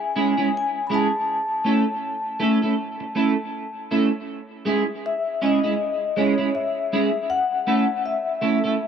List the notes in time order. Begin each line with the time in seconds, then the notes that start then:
Already playing: G#5
0.16 G#3 C#4 E4 G#4
0.37 G#3 C#4 E4 G#4
0.57 G#5
0.87 G#3 C#4 E4 B5
0.91 G#4 A5
1.65 A3 C#4 E4 A4
2.40 A3 C#4 E4 A4
2.62 A3 C#4 E4 A4
3.00 muted clean electric guitar stroke
3.15 A3 C#4 E4 A4
3.91 A3 C#4 E4 A4
4.65 G#3 C#4 E4 G#4
5.06 E5
5.42 G#3 C#4 E4 G#4 D#5
5.63 G#3 C#4 E4 G#4
6.17 G#3 C#4 E4 G#4 C#5
6.38 G#3 C#4 E4 G#4
6.55 E5
6.93 G#3 C#4 E4 G#4
7.30 F#5
7.67 A3 C#4 E4 A4
8.06 E5
8.41 A3 C#4 E4 A4
8.64 A3 C#4 E4 A4